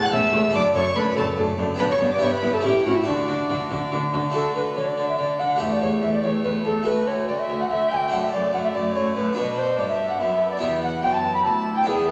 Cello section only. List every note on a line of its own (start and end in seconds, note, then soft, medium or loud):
0.12 0.20 E2 medium
0.33 0.41 E2 medium
0.54 0.62 F#2 medium
0.75 0.83 F#2 medium
0.96 1.04 F#2 medium
1.16 1.24 F#2 medium
1.37 1.45 F#2 medium
1.58 1.66 F#2 medium
1.79 1.87 G2 medium
2.01 2.09 G2 medium
2.22 2.30 G2 medium
2.43 2.51 G2 medium
2.64 2.72 A2 medium
2.86 2.94 A2 medium
3.07 3.15 D3 medium
3.28 3.36 D3 medium
3.49 3.57 D3 medium
3.71 3.79 D3 medium
3.92 4.00 D3 medium
4.13 4.21 D3 medium
4.34 4.42 D3 soft
4.56 4.64 D3 soft
4.76 4.84 D3 medium
4.98 5.06 D3 soft
5.19 5.27 D3 soft
5.40 5.48 D3 medium
5.61 5.69 E2 soft
5.81 5.89 E2 soft
6.02 6.10 E2 medium
6.23 6.31 E2 soft
6.44 6.52 E2 soft
6.66 6.74 E2 medium
6.87 6.95 D2 soft
7.07 7.15 D2 soft
7.28 7.36 D2 medium
7.49 7.57 D2 medium
7.70 7.78 D2 soft
7.91 7.99 D2 soft
8.13 8.21 F#2 soft
8.33 8.41 F#2 soft
8.54 8.62 F#2 medium
8.75 8.83 F#2 medium
8.96 9.04 F#2 soft
9.16 9.24 F#2 medium
9.37 9.76 B2 medium
9.79 10.20 G2 medium
10.20 10.61 F#2 soft
10.61 11.02 E2 medium
11.03 11.45 F#2 medium
11.45 11.87 D2 medium
11.87 12.11 E2 medium